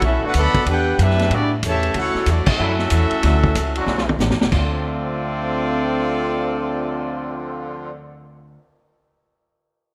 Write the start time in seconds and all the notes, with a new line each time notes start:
0.02 B1 C#4 E4 F#4 A4 E5, kick, ride
0.21 D3 A3 B3 D4 F#4, muted upright bass stroke
0.26 D4 A4 B4 F#5
0.34 D2 D3 F#3 B3 A4 D5 F#5, kick, hi-hat pedal, ride
0.38 B5
0.54 muted upright bass stroke, kick, ride
0.65 E2 B3 D4 G4, kick, ride
0.69 D4 B4 F#5 G5
0.99 F#2 B3 D4 E4 G4 B4 E5, kick, hi-hat pedal, ride
1.10 snare
1.19 snare, ride
1.30 A2 C#3 G3 B3 D4 F#4, kick, ride
1.34 B3 E4 G4 D5
1.63 E2 C#3 E3 A3, kick, hi-hat pedal, ride
1.67 G4 C#5 E5 A5
1.83 ride
1.94 D2 A3 C#4 F#4 A4 C#5 F#5, kick, ride
1.98 E4
2.15 muted upright bass stroke, snare
2.26 E2 F#3 A3 D4 E4 F#4 D5, kick, hi-hat pedal, ride
2.30 A3
2.46 A3 C#4 E4 F#4 A4 E5, muted upright bass stroke, kick, crash
2.59 F#2 D3 F#3 C#4 E4
2.79 snare
2.90 E2, kick, hi-hat pedal, ride
3.11 muted upright bass stroke, ride
3.22 D2 D3 F#3 C#4 E4, kick, snare, ride
3.44 kick
3.55 C#2, kick, hi-hat pedal, ride
3.75 D3 F#3 C#4 F#4, ride
3.86 B1, snare
3.98 snare
4.09 high tom
4.19 A1, snare, hi-hat pedal
4.30 F#1, snare
4.41 D1, snare
4.52 D2 D3 F3 A3 C4 F4 A4 D5, kick, crash
4.73 cymbal swell